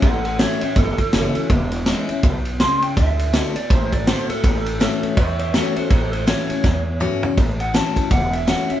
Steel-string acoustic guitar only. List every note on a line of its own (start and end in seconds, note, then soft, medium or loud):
0.03 0.74 A2 medium
0.40 0.61 E3 medium
0.40 0.61 A3 loud
0.40 0.62 C#4 medium
0.40 0.61 F#4 loud
0.62 0.77 C#4 medium
0.62 0.76 F#4 medium
0.77 1.47 E2 medium
1.13 1.35 E3 medium
1.13 1.35 A3 medium
1.13 1.35 C#4 medium
1.13 1.34 F#4 medium
1.35 1.50 C#4 medium
1.35 1.49 F#4 medium
1.51 2.21 E2 medium
1.87 2.08 E3 medium
1.87 2.08 G#3 medium
1.87 2.09 C#4 medium
1.87 2.08 E4 loud
2.09 2.24 C#4 soft
2.09 2.23 E4 medium
2.24 2.59 B2 medium
2.61 2.96 C#3 medium
2.97 3.33 D3 medium
3.34 3.55 D3 medium
3.34 3.56 A3 medium
3.34 3.56 B3 medium
3.34 3.55 F#4 loud
3.56 3.71 B3 medium
3.56 3.70 F#4 medium
3.71 4.41 A2 loud
4.07 4.29 D3 loud
4.07 4.29 A3 medium
4.07 4.29 B3 loud
4.07 4.28 F#4 loud
4.29 4.44 B3 medium
4.29 4.43 F#4 medium
4.44 5.15 A2 medium
4.80 5.16 E3 medium
4.80 5.16 A3 medium
4.80 5.16 C#4 medium
4.80 5.17 F#4 loud
5.17 5.88 E2 medium
5.54 5.75 E3 loud
5.54 5.76 A3 loud
5.54 5.76 C#4 loud
5.54 5.75 F#4 loud
5.76 5.91 C#4 soft
5.76 5.90 F#4 medium
5.91 6.61 A2 medium
6.27 6.49 E3 medium
6.27 6.49 A3 loud
6.27 6.49 C#4 loud
6.27 6.48 F#4 loud
6.49 6.64 C#4 medium
6.49 6.63 F#4 medium
6.64 7.35 E2 loud
7.00 7.22 E3 loud
7.00 7.22 A3 medium
7.00 7.22 C#4 loud
7.00 7.22 F#4 loud
7.23 7.38 C#4 medium
7.23 7.37 F#4 medium
7.37 8.08 A2 medium
7.74 7.95 E3 medium
7.74 7.96 A3 medium
7.74 7.96 C#4 medium
7.74 7.95 F#4 medium
7.96 8.11 C#4 soft
7.96 8.10 F#4 medium
8.11 8.80 E2 medium
8.47 8.69 E3 medium
8.47 8.69 A3 medium
8.47 8.69 C#4 loud
8.47 8.68 F#4 loud
8.69 8.80 C#4 medium
8.69 8.80 F#4 medium